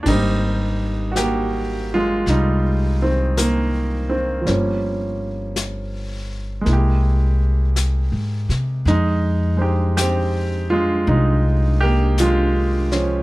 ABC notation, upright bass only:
X:1
M:4/4
L:1/8
Q:"Swing" 1/4=54
K:Ab
V:1 name="Upright bass" clef=bass
A,,,4 C,,4 | G,,,4 C,,2- (3C,, A,, C, | F,,4 C,,4 |]